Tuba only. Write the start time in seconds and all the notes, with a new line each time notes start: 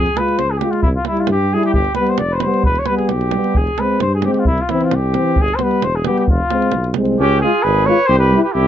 0.39 C#2
0.83 C2
1.29 G2
1.74 G1
2.20 F1
2.65 E1
3.11 B1
3.55 F1
4.02 G2
4.47 C2
4.92 C2
5.37 G1
5.82 E1
6.28 F1
6.73 B1
6.96 C2
7.19 C#2
7.64 G#1
8.09 C2
8.55 C2